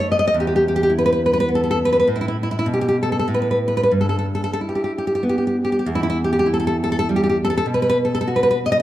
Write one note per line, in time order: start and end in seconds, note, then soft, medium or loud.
0.00 0.31 F#2 medium
0.00 0.34 A3 soft
0.12 0.18 D#5 medium
0.19 0.26 D#5 medium
0.28 0.35 D#5 medium
0.34 2.02 E2 soft
0.40 0.46 G4 medium
0.47 0.55 G4 medium
0.56 0.63 G4 medium
0.68 0.75 G4 medium
0.76 0.82 G4 medium
0.83 0.91 G4 medium
0.90 1.76 E4 soft
0.99 1.04 B4 medium
1.06 1.11 B4 medium
1.13 1.20 B4 medium
1.26 1.32 B4 medium
1.33 1.39 B4 medium
1.40 1.48 B4 medium
1.49 2.06 B3 soft
1.55 1.63 A4 medium
1.64 1.70 A4 medium
1.71 1.78 A4 medium
1.85 1.91 B4 medium
1.93 1.98 B4 medium
2.00 2.07 B4 medium
2.07 2.64 A2 soft
2.16 2.20 E4 medium
2.21 2.27 E4 soft
2.28 2.36 E4 medium
2.43 2.50 E4 medium
2.51 2.58 E4 medium
2.59 2.66 E4 medium
2.66 3.24 B2 soft
2.74 2.80 G4 soft
2.81 2.87 G4 medium
2.89 2.96 G4 medium
3.03 3.11 A4 medium
3.12 3.18 A4 medium
3.19 3.26 A4 medium
3.28 3.88 A2 soft
3.34 3.41 B4 medium
3.42 3.49 B4 soft
3.51 3.58 B4 medium
3.68 3.74 B4 medium
3.77 3.82 B4 medium
3.83 3.90 B4 medium
3.91 5.84 G2 soft
4.01 4.08 A4 soft
4.09 4.16 A4 soft
4.19 4.25 A4 medium
4.35 4.42 A4 medium
4.44 4.50 A4 medium
4.53 4.59 A4 medium
4.61 5.57 E4 soft
4.69 4.74 G4 soft
4.75 4.83 G4 soft
4.84 4.91 G4 soft
4.98 5.06 G4 soft
5.07 5.14 G4 soft
5.15 5.23 G4 medium
5.23 5.87 B3 soft
5.29 5.37 G4 soft
5.38 5.46 G4 soft
5.47 5.55 G4 soft
5.65 5.71 G4 soft
5.72 5.78 G4 soft
5.79 5.87 G4 soft
5.86 7.62 E2 medium
5.95 6.02 E4 medium
6.03 6.08 E4 medium
6.10 6.17 E4 medium
6.24 6.31 G4 medium
6.33 6.38 G4 medium
6.39 6.47 G4 medium
6.46 7.36 E4 soft
6.54 6.58 A4 medium
6.60 6.66 A4 medium
6.67 6.76 A4 medium
6.84 6.91 A4 medium
6.92 6.98 A4 medium
6.99 7.07 A4 medium
7.09 7.68 G3 soft
7.16 7.22 G4 medium
7.24 7.28 G4 medium
7.29 7.37 G4 medium
7.45 7.49 A4 medium
7.50 7.56 A4 medium
7.58 7.66 A4 medium
7.66 8.82 B2 soft
7.74 7.81 B4 medium
7.82 7.88 B4 medium
7.89 7.97 B4 medium
8.05 8.12 A4 medium
8.15 8.20 A4 medium
8.21 8.28 A4 medium
8.28 8.82 F#4 soft
8.36 8.42 B4 medium
8.43 8.49 B4 medium
8.51 8.58 B4 medium
8.66 8.71 D#5 medium
8.72 8.79 D#5 medium